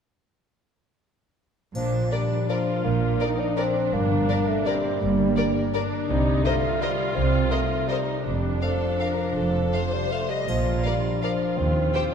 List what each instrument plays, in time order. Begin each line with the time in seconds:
1.75 double bass section A#1, harp A#2, cello section A#2, bassoon F3, viola section D4, triangle
1.92 harp F3
2.11 bassoon G3, harp A#3, viola section D4, violin section A#4 D5
2.30 harp D4
2.49 bassoon F3, viola section F4, harp A#4, violin section A#4 D5
2.67 harp D4
2.84 double bass section A#1, harp A#2, cello section A#2, bassoon A#3
3.01 harp F3
3.20 viola section D#4, violin section A#4 D5
3.38 harp D4, bassoon D4
3.56 bassoon C4, viola section D4, violin section A#4 D5
3.75 harp D4
3.92 double bass section G1, harp G2, cello section G2, bassoon A#3
4.10 harp D3
4.28 harp A#3, violin section A#4 D5
4.48 bassoon A3, harp D4
4.66 bassoon G3, viola section C4, harp A#4, violin section A#4 D5
4.84 harp D4
5.01 double bass section G1, cello section G2, harp G2, viola section A#3
5.19 harp D3
5.36 harp A#3, violin section A#4 D5
5.56 harp D4
5.74 viola section D4, violin section A#4 D5, harp A#4
5.92 harp D4
6.08 double bass section C2, cello section C3, harp C3, bassoon G3, viola section D#4
6.26 harp G3
6.44 bassoon A3, harp C4, viola section F4, violin section A#4 C5 D#5
6.63 harp D#4
6.82 bassoon G3, harp A#4, violin section A#4 C5 D#5
6.99 harp D#4
7.15 double bass section C2, harp C3, cello section C3, bassoon C4
7.33 harp G3
7.51 bassoon A3, violin section A#4 C5 D#5
7.70 harp D#4
7.88 bassoon G3, viola section D#4, harp A#4, violin section A#4 C5 D#5
8.07 harp D#4
8.24 double bass section F1, harp F2, cello section F2, bassoon G3, viola section D4
8.42 harp F3
8.62 bassoon F3, harp D4, violin section A4 F5
8.80 harp F4
8.99 harp A#4, violin section A#4 F5
9.18 harp F4
9.36 double bass section F1, harp F2, cello section F2, violin section A4
9.53 harp C3
9.73 harp C4, violin section C5 F5
9.92 bassoon G3, harp F4
10.11 bassoon A3, harp A4, violin section F5
10.30 bassoon G3, harp F4, violin section D#5
10.47 double bass section A#1, cello section A#2, harp A#2, bassoon F3, viola section F4, triangle
10.65 harp F3
10.84 bassoon G3, harp D4, violin section A#4 D5 F5
11.02 harp F4
11.21 bassoon F3, viola section F4, harp A#4, violin section A#4 D5 F5
11.40 harp F4
11.57 cello section D#2, double bass section D#2, harp D#3, bassoon C4
11.75 harp D#4
11.93 harp C4, violin section G4 C5 G5